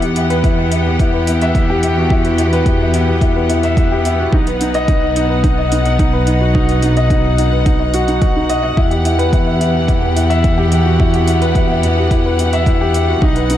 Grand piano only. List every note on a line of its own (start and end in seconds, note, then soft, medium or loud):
0.02 0.10 G4 medium
0.17 0.30 E4 medium
0.30 0.43 B4 loud
0.44 0.57 E4 medium
0.58 0.71 E5 medium
0.72 0.85 E4 medium
0.86 0.99 G4 medium
1.00 1.13 E4 medium
1.14 1.22 B4 medium
1.28 1.41 E4 medium
1.42 1.55 E5 loud
1.56 1.69 E4 medium
1.70 1.83 G4 loud
1.84 1.97 E4 medium
1.98 2.11 F#4 medium
2.12 2.24 E4 loud
2.26 2.33 G4 medium
2.39 2.52 E4 medium
2.53 2.66 B4 loud
2.67 2.80 E4 medium
2.82 2.94 E5 medium
2.95 3.08 E4 medium
3.09 3.22 G4 medium
3.22 3.35 E4 medium
3.36 3.44 B4 medium
3.50 3.63 E4 medium
3.64 3.77 E5 loud
3.78 3.91 E4 medium
3.92 4.05 G4 loud
4.06 4.19 E4 medium
4.20 4.33 F#4 medium
4.34 4.47 D#4 loud
4.47 4.55 B4 medium
4.61 4.74 D#4 medium
4.75 4.88 D#5 loud
4.89 5.02 D#4 medium
5.02 5.16 F#5 medium
5.17 5.30 D#4 medium
5.30 5.43 B4 medium
5.44 5.57 D#4 medium
5.58 5.66 D#5 medium
5.72 5.85 D#4 medium
5.86 5.99 F#5 loud
6.00 6.13 D#4 medium
6.13 6.27 B4 loud
6.28 6.41 D#4 medium
6.41 6.54 F#4 medium
6.55 6.68 D#4 loud
6.69 6.77 B4 medium
6.83 6.96 D#4 medium
6.97 7.10 D#5 loud
7.11 7.24 D#4 medium
7.25 7.38 F#5 medium
7.38 7.52 D#4 medium
7.53 7.66 B4 medium
7.66 7.79 D#4 medium
7.80 7.88 D#5 medium
7.94 8.07 F#4 loud
8.08 8.21 D#4 medium
8.22 8.35 F#4 medium
8.36 8.49 D#4 medium
8.50 8.62 D#5 loud
8.63 8.77 D#5 medium
8.77 8.90 E4 loud
8.91 8.99 G4 medium
9.05 9.18 E4 medium
9.19 9.32 B4 loud
9.33 9.46 E4 medium
9.47 9.60 E5 medium
9.61 9.74 E4 medium
9.75 9.88 G4 medium
9.89 10.02 E4 medium
10.02 10.10 B4 medium
10.16 10.29 E4 medium
10.30 10.43 E5 loud
10.44 10.57 E4 medium
10.58 10.71 G4 loud
10.72 10.85 E4 medium
10.86 10.99 F#4 medium
11.00 11.13 E4 loud
11.14 11.22 G4 medium
11.28 11.41 E4 medium
11.42 11.55 B4 loud
11.56 11.69 E4 medium
11.70 11.83 E5 medium
11.84 11.97 E4 medium
11.98 12.11 G4 medium
12.12 12.25 E4 medium
12.26 12.33 B4 medium
12.39 12.52 E4 medium
12.53 12.66 E5 loud
12.68 12.80 E4 medium
12.81 12.94 G4 loud
12.95 13.08 E4 medium
13.09 13.22 F#4 medium
13.23 13.36 D#4 loud
13.37 13.44 B4 medium
13.50 13.57 D#4 medium